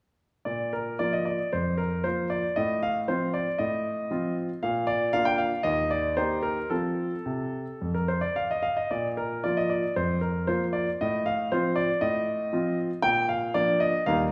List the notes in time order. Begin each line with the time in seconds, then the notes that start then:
0.45 A#2 D5
0.73 A#4
0.99 F3 A#3 F4 D5
1.13 D#5
1.25 D5
1.53 F2 C5
1.78 A#4
2.04 F3 A#3 F4 C5
2.30 D5
2.56 A2 D#5
2.83 F5
3.08 F3 C4 F4 C5
3.34 D5
3.58 A2 D#5
4.11 F3 C4 F4
4.63 A#2 F5
4.87 D5
5.13 A#3 D4 F4 F5
5.25 G5
5.38 F5
5.63 D#2 D#5
5.91 D5
6.17 A#3 D#4 G4 C5
6.43 A#4
6.70 F3 C4 F4 A4
7.26 C3
7.82 F2
7.94 A#4
8.08 C5
8.21 D5
8.36 F5
8.51 D#5
8.62 F5
8.77 D#5
8.91 A#2 D5
9.17 A#4
9.44 F3 A#3 F4 D5
9.57 D#5
9.70 D5
9.96 F2 C5
10.21 A#4
10.47 F3 A#3 F4 C5
10.73 D5
11.01 A2 D#5
11.26 F5
11.52 F3 C4 F4 C5
11.76 D5
12.01 A2 D#5
12.53 F3 C4 F4
13.02 A#2 G5
13.29 F5
13.54 F3 A#3 D4 D5
13.80 D#5
14.06 D#2 G3 A#3 D#4 F5